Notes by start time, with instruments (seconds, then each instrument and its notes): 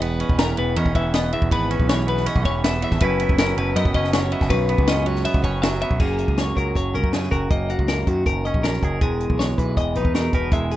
Already playing: picked electric bass E1, clean electric guitar E2
0.01 clean electric guitar B3 B4, ride
0.20 clean electric guitar C#4, ride
0.29 picked electric bass E1, kick
0.39 clean electric guitar E3 A#4, snare, ride
0.57 picked electric bass E1, clean electric guitar B3 B4, ride
0.76 picked electric bass E2, clean electric guitar C#4 D#5, ride
0.86 picked electric bass E1, kick
0.95 picked electric bass E1, clean electric guitar E3 E5, kick, ride
1.14 clean electric guitar B3 D#5, snare, ride
1.33 clean electric guitar E2 E5, ride
1.42 picked electric bass E1, kick
1.51 picked electric bass G#1, clean electric guitar B3 B4, kick, ride
1.71 clean electric guitar C#4, ride
1.80 picked electric bass B1, kick
1.88 clean electric guitar E3 C#5, snare, ride
2.07 clean electric guitar B3 B4, ride
2.17 snare
2.26 clean electric guitar C#4 D#5, ride
2.36 picked electric bass B1, kick
2.43 picked electric bass E1, clean electric guitar E3 C#5, kick, ride
2.64 clean electric guitar B3 E5, snare, ride
2.81 clean electric guitar E2 E5, ride
2.91 picked electric bass G#1, kick, snare
3.00 picked electric bass F#1, clean electric guitar F#2 F#3 B3 C#4 B4, kick, ride
3.05 clean electric guitar E4
3.20 clean electric guitar B3, ride
3.29 picked electric bass F#1, kick
3.38 clean electric guitar C#4 A#4, snare, ride
3.57 picked electric bass F#1, clean electric guitar F#3 B4, ride
3.76 picked electric bass F#2, clean electric guitar B3 D#5, ride
3.85 picked electric bass F#1, kick
3.94 picked electric bass F#1, clean electric guitar C#4 D#5, kick, ride
4.04 snare
4.13 clean electric guitar F#3 C#5, snare, ride
4.32 clean electric guitar B3 E5, ride
4.41 picked electric bass F#1, kick, snare
4.50 picked electric bass B1, clean electric guitar F#2 B4, kick, ride
4.69 clean electric guitar B3, ride
4.78 picked electric bass C#2, kick
4.87 clean electric guitar C#4 D#5, snare, ride
5.06 clean electric guitar F#3 C#5, ride
5.16 snare
5.25 clean electric guitar B3 E5, ride
5.34 picked electric bass C#2, kick
5.44 picked electric bass F#1, clean electric guitar C#4 C#5, kick, ride
5.62 clean electric guitar F#3 E5, snare, ride
5.82 clean electric guitar B3 E5, ride
5.91 picked electric bass B1, kick
6.00 picked electric bass F#1, clean electric guitar F#2 A#3 G#4, kick, crash
6.18 closed hi-hat
6.28 picked electric bass C#2, kick
6.38 clean electric guitar C#5, snare, closed hi-hat
6.56 picked electric bass C#2, clean electric guitar F#3 A#4, kick, closed hi-hat
6.75 picked electric bass F#1, clean electric guitar C#5, kick, closed hi-hat
6.94 picked electric bass C#2, clean electric guitar C#4 A#4, closed hi-hat
7.03 picked electric bass F#2, kick
7.13 clean electric guitar C#3 G#4, snare, closed hi-hat
7.23 snare
7.31 picked electric bass F#1, clean electric guitar F#4 A#4, kick, closed hi-hat
7.50 picked electric bass F#1, clean electric guitar F#2 A#3 D#5, kick, closed hi-hat
7.70 clean electric guitar F#4, closed hi-hat
7.79 picked electric bass C#2, kick
7.88 clean electric guitar A#4, snare, closed hi-hat
8.07 picked electric bass F#2, clean electric guitar D#3 F#4, kick, closed hi-hat
8.26 picked electric bass F#1, clean electric guitar A#4, kick, closed hi-hat
8.45 clean electric guitar C#4 D#5, closed hi-hat
8.54 picked electric bass A#1, kick
8.63 clean electric guitar F#2 A#4, snare, closed hi-hat
8.82 picked electric bass F#1, clean electric guitar G#4, kick, closed hi-hat
9.01 picked electric bass E1, clean electric guitar E2 G#3 G#4, kick, closed hi-hat
9.20 closed hi-hat
9.30 picked electric bass B1, kick
9.39 clean electric guitar C#5, snare, closed hi-hat
9.58 picked electric bass B1, clean electric guitar E3 B4, kick, closed hi-hat
9.77 picked electric bass E1, clean electric guitar D#5, kick, closed hi-hat
9.95 picked electric bass B1, clean electric guitar D#4 B4, closed hi-hat
10.05 picked electric bass E2, kick
10.15 clean electric guitar B2 A#4, snare, closed hi-hat
10.33 picked electric bass E1, clean electric guitar A#4 B4, kick, closed hi-hat
10.51 picked electric bass E1, clean electric guitar E2 G#3 E5, kick, closed hi-hat
10.71 clean electric guitar G#4, closed hi-hat